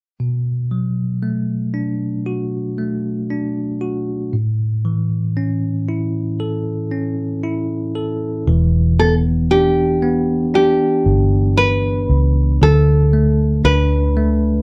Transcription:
0.20 4.30 B2 soft
0.71 2.74 F#3 soft
1.23 2.77 A3 soft
1.74 3.29 D4 soft
2.26 3.80 F#4 soft
2.78 4.30 A3 soft
3.30 4.31 D4 soft
3.81 4.32 F#4 soft
4.33 8.43 A2 soft
4.85 6.88 E3 soft
5.37 6.90 C#4 soft
5.89 7.42 E4 soft
6.40 7.94 A4 soft
6.92 8.43 C#4 soft
7.44 8.44 E4 soft
7.95 8.46 A4 soft
8.47 10.76 E1 medium
8.47 12.57 E3 medium
8.99 10.01 B3 soft
8.99 9.13 A4 medium
9.51 10.53 D4 medium
9.51 10.54 G4 medium
10.03 12.06 B3 medium
10.54 12.57 D4 medium
10.54 11.57 G4 medium
11.06 12.05 G1 medium
11.57 12.62 B4 medium
12.09 12.58 C#2 medium
12.62 13.61 D2 medium
12.62 14.62 D3 medium
12.62 13.64 A4 medium
13.13 14.15 A3 medium
13.64 14.62 D2 medium
13.64 14.62 D4 medium
13.64 14.62 B4 medium
14.17 14.62 A3 medium

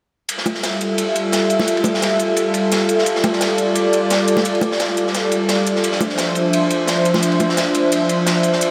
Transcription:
0.29 5.80 G3 medium
0.29 5.80 F4 medium
0.29 5.80 A4 medium
0.29 3.04 E5 medium
0.29 closed hi-hat medium
0.29 ride medium
0.38 snare soft
0.46 closed hi-hat medium
0.46 ride medium
0.46 high bongo medium
0.55 snare soft
0.63 snare loud
0.63 closed hi-hat medium
0.63 ride medium
0.81 closed hi-hat medium
0.81 ride medium
0.98 closed hi-hat medium
0.98 ride medium
1.16 closed hi-hat medium
1.16 ride medium
1.32 snare medium
1.32 closed hi-hat medium
1.32 ride medium
1.50 closed hi-hat medium
1.50 ride medium
1.59 snare medium
1.59 high bongo soft
1.68 closed hi-hat medium
1.68 ride medium
1.77 ride soft
1.84 closed hi-hat medium
1.84 ride medium
1.84 high bongo medium
1.94 snare medium
2.02 snare loud
2.02 closed hi-hat medium
2.02 ride medium
2.19 closed hi-hat medium
2.19 ride medium
2.37 closed hi-hat medium
2.37 ride medium
2.54 closed hi-hat medium
2.54 ride medium
2.72 snare loud
2.72 closed hi-hat medium
2.72 ride medium
2.89 closed hi-hat medium
2.89 ride medium
2.99 snare soft
3.06 5.81 D5 medium
3.06 closed hi-hat medium
3.06 ride medium
3.16 snare soft
3.24 closed hi-hat medium
3.24 ride medium
3.24 high bongo medium
3.33 snare soft
3.41 snare loud
3.41 closed hi-hat medium
3.41 ride medium
3.58 closed hi-hat medium
3.58 ride medium
3.75 closed hi-hat medium
3.75 ride medium
3.93 closed hi-hat medium
3.93 ride medium
4.10 snare loud
4.10 closed hi-hat medium
4.10 ride medium
4.28 closed hi-hat medium
4.28 ride medium
4.37 snare medium
4.37 high bongo soft
4.45 closed hi-hat medium
4.45 ride medium
4.55 ride soft
4.61 closed hi-hat medium
4.61 ride medium
4.61 high bongo medium
4.72 snare soft
4.80 snare loud
4.80 closed hi-hat medium
4.80 ride medium
4.97 closed hi-hat medium
4.97 ride medium
5.07 snare soft
5.14 snare medium
5.14 closed hi-hat medium
5.14 ride medium
5.32 closed hi-hat medium
5.32 ride medium
5.49 snare loud
5.49 closed hi-hat medium
5.49 ride medium
5.67 closed hi-hat medium
5.67 ride medium
5.76 snare soft
5.84 8.71 F3 medium
5.84 8.71 D4 medium
5.84 8.71 C5 medium
5.84 8.71 E5 medium
5.84 closed hi-hat medium
5.84 ride medium
5.92 snare soft
6.01 closed hi-hat medium
6.01 ride medium
6.01 high bongo medium
6.10 snare soft
6.18 snare loud
6.18 closed hi-hat medium
6.18 ride medium
6.35 closed hi-hat medium
6.35 ride medium
6.53 closed hi-hat medium
6.53 ride medium
6.70 closed hi-hat medium
6.70 ride medium
6.88 snare loud
6.88 closed hi-hat medium
6.88 ride medium
7.05 closed hi-hat medium
7.05 ride medium
7.14 snare medium
7.14 high bongo soft
7.23 closed hi-hat medium
7.23 ride medium
7.32 ride soft
7.40 closed hi-hat medium
7.40 ride medium
7.40 high bongo medium
7.49 snare soft
7.57 snare loud
7.57 closed hi-hat medium
7.57 ride medium
7.75 closed hi-hat medium
7.75 ride medium
7.92 closed hi-hat medium
7.92 ride medium
8.09 closed hi-hat medium
8.09 ride medium
8.27 snare loud
8.27 closed hi-hat medium
8.27 ride medium
8.43 closed hi-hat medium
8.43 ride medium
8.53 snare soft
8.61 closed hi-hat medium
8.61 ride medium

